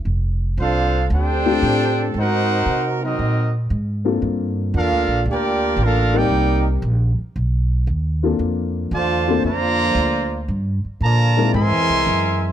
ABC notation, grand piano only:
X:1
M:4/4
L:1/8
Q:"Swing" 1/4=115
K:F
V:1 name="Grand piano"
z4 z [A,CDFG]3 | z6 z [B,CDFA]- | [B,CDFA]2 z4 z [G,C_EBd]- | [G,C_EBd]2 z4 z [B,CD^EA]- |
[B,CD^EA]2 z [B,CDFA] z4 | z3 [_A,C_E=EB] z4 |]